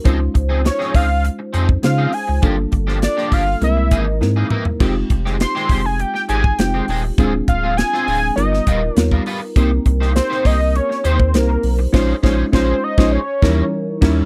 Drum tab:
CC |----------------|----------------|x---------------|----------------|
HH |x-x-x-o-x-x-x-o-|x-x-x-o-x-x-----|--x-x-o-x-x-x-o-|x-x-x-o-x-x-x-o-|
SD |----oo------o---|---ooo------o---|---ooo---o--o---|----oo---o--o---|
T2 |----------------|--------------o-|----------------|----------------|
FT |----------------|---------------o|----------------|----------------|
BD |o-o---o----o----|o-o---o---o-----|o-o---o----o----|o-o-------o--o--|

CC |----------------|x-------------x-|
HH |x-x-x-o-x-x-x-o-|----------------|
SD |---ooo---o--o---|o-o-o--o--o---o-|
T2 |----------------|----------------|
FT |----------------|----------------|
BD |o-o---o----o----|o-o-o--o--o---o-|